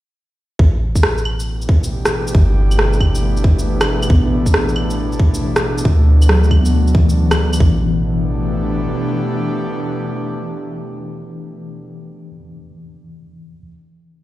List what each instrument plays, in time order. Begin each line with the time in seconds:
0.59 808-style bass A1, analog synth pad B2, kick
0.90 analog synth pad E3
0.95 kick, shaker
1.03 cross-stick
1.18 shaker
1.25 claves
1.32 analog synth pad A3 G4
1.39 analog synth pad D4, shaker
1.62 shaker
1.69 kick
1.84 shaker
2.05 cross-stick, shaker
2.27 shaker
2.35 808-style bass G1, kick
2.71 claves, shaker
2.79 cross-stick
2.93 shaker
3.00 kick, claves
3.15 shaker
3.37 shaker
3.44 kick
3.59 shaker
3.81 cross-stick, claves, shaker
4.03 claves, shaker
4.10 808-style bass A1, tine electric piano B3, kick
4.46 kick, shaker
4.54 cross-stick
4.69 shaker
4.76 claves
4.90 shaker
5.12 shaker
5.19 kick
5.34 shaker
5.56 cross-stick, shaker
5.78 shaker
5.85 808-style bass D2, kick
6.03 analog synth pad F#4
6.22 claves, shaker
6.29 tine electric piano F#3, cross-stick
6.44 shaker
6.49 tine electric piano A3, kick, claves
6.61 tine electric piano B3
6.65 shaker
6.87 shaker
6.95 tine electric piano E3, kick
7.09 shaker
7.31 cross-stick, claves, shaker
7.53 claves, shaker
7.60 808-style bass A1, analog synth pad B2, tine electric piano E3, kick
7.69 analog synth pad E3
7.77 analog synth pad A3
7.81 analog synth pad D4
7.89 analog synth pad G4